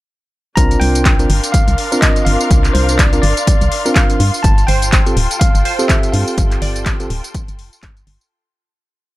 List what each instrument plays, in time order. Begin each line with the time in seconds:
0.56 fm bass C2, tine electric piano C4 D4 F4 A#4 A#5, string section D4, kick, closed hi-hat, tambourine
0.71 string section C6, closed hi-hat, tambourine
0.80 fm bass C2, tine electric piano G5, open hi-hat
0.86 string section A#4
0.95 closed hi-hat, tambourine
1.05 kick, clap, closed hi-hat, tambourine
1.17 tine electric piano C4 D4 F4 A#4, string section F5, closed hi-hat, tambourine
1.30 fm bass G1, open hi-hat
1.44 closed hi-hat, tambourine
1.52 tine electric piano F5, kick, closed hi-hat, tambourine
1.68 fm bass C2, closed hi-hat, tambourine
1.78 open hi-hat
1.92 tine electric piano C4 D4 F4 A#4, tambourine
2.01 tine electric piano D#5, kick, clap, closed hi-hat, tambourine
2.16 closed hi-hat, tambourine
2.25 fm bass G1, tine electric piano F5, open hi-hat
2.41 tambourine
2.51 fm bass C2, kick, closed hi-hat, tambourine
2.64 clap, closed hi-hat, tambourine
2.73 fm bass C2, tine electric piano C5, open hi-hat
2.89 closed hi-hat, tambourine
2.98 tine electric piano D5, kick, clap, closed hi-hat, tambourine
3.13 tine electric piano C4 D4 F4 A#4, closed hi-hat, tambourine
3.22 fm bass G1, tine electric piano D5, open hi-hat
3.37 closed hi-hat, tambourine
3.47 kick, closed hi-hat, tambourine
3.61 fm bass C2, closed hi-hat, tambourine
3.72 open hi-hat
3.85 tine electric piano C4 D4 F4 A#4, tambourine
3.94 tine electric piano F5, kick, clap, closed hi-hat, tambourine
4.10 closed hi-hat, tambourine
4.20 fm bass G2, string section F4, open hi-hat
4.34 tambourine
4.43 fm bass G1, string section A4, tine electric piano A5, kick, closed hi-hat, tambourine
4.58 closed hi-hat, tambourine
4.67 fm bass G1, synth pluck C5, tine electric piano G5, open hi-hat
4.79 string section G5, closed hi-hat, tambourine
4.92 kick, clap, closed hi-hat, tambourine
5.06 tine electric piano C4 F4 G4 A4, closed hi-hat, tambourine
5.17 fm bass D1, open hi-hat
5.31 closed hi-hat, tambourine
5.40 tine electric piano F5, kick, closed hi-hat, tambourine
5.55 fm bass G1, closed hi-hat, tambourine
5.65 synth pluck C5, open hi-hat
5.79 tine electric piano C4 F4 G4 A4, tambourine
5.88 tine electric piano E5, kick, clap, closed hi-hat, tambourine
6.03 closed hi-hat, tambourine
6.12 fm bass G2, tine electric piano F5, open hi-hat
6.28 tambourine
6.38 fm bass G1, kick, closed hi-hat, tambourine
6.51 clap, closed hi-hat, tambourine
6.62 fm bass G1, synth pluck D5, open hi-hat
6.76 closed hi-hat, tambourine
6.86 kick, clap, closed hi-hat, tambourine
7.00 tine electric piano C4 F4 G4 A4, closed hi-hat, tambourine
7.10 fm bass D1, open hi-hat
7.24 closed hi-hat, tambourine
7.34 kick, closed hi-hat, tambourine
7.48 fm bass G1, closed hi-hat, tambourine
7.59 fm bass F1, open hi-hat
7.73 tambourine
7.83 fm bass G1, kick, clap, closed hi-hat, tambourine
7.97 closed hi-hat, tambourine
8.07 fm bass G1, open hi-hat
8.21 tambourine